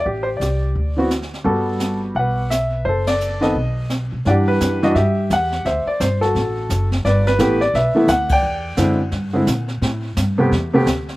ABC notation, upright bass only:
X:1
M:4/4
L:1/8
Q:"Swing" 1/4=172
K:G
V:1 name="Upright bass" clef=bass
A,,,2 C,,2 D,,4 | G,,,4 B,,,4 | F,,,4 B,,,3 B,, | [K:Em] G,,2 F,,2 G,,2 E,,2 |
D,, z G,,,2 A,,,2 F,,,2 | G,,,2 A,,,2 B,,, z D,,2 | E,,2 F,,2 G,,2 ^A,,2 | A,,2 G,,2 E,,2 D,,2 |]